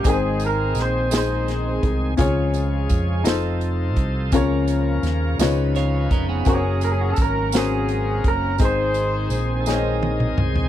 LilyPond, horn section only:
\new Staff \with { instrumentName = "Horn section" } { \time 6/8 \key aes \mixolydian \tempo 4. = 56 << { aes'8 bes'8 c''8 c''4 r8 | r2. | r2. | aes'4 bes'8 aes'4 bes'8 |
c''2 r4 | } \\ { <c' ees'>4. <ees' aes'>4. | r2. | r2. | des'4. des'4. |
<ees' aes'>2 r4 | } >> }